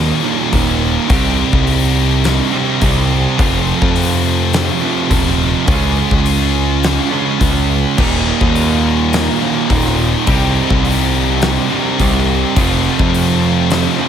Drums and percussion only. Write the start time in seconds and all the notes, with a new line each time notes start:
0.53 kick, open hi-hat
1.10 kick, open hi-hat
1.53 kick
1.67 open hi-hat
2.24 snare, open hi-hat
2.81 kick, open hi-hat
3.39 kick, open hi-hat
3.82 kick
3.96 open hi-hat
4.53 snare, open hi-hat
5.11 kick, open hi-hat
5.27 snare
5.68 kick, open hi-hat
6.11 kick
6.26 open hi-hat
6.83 snare, open hi-hat
7.41 kick, open hi-hat
7.98 kick, crash
8.41 kick
8.56 open hi-hat
9.13 snare, open hi-hat
9.70 kick, open hi-hat
9.85 snare
10.27 kick, open hi-hat
10.70 kick
10.85 open hi-hat
11.41 snare, open hi-hat
11.99 kick, open hi-hat
12.56 kick, open hi-hat
12.99 kick
13.14 open hi-hat
13.70 snare, open hi-hat